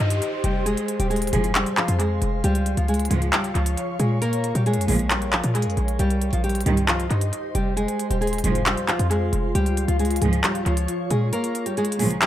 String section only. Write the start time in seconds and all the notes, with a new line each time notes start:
1.33 C2 G#2 F3
3.11 C#2 G#2 F3
4.88 C#2 A#2 F3
6.66 C2 G2 D#3
8.44 C2 G#2 F3
10.22 C#2 G#2 F3
11.99 C#2 A#2 F3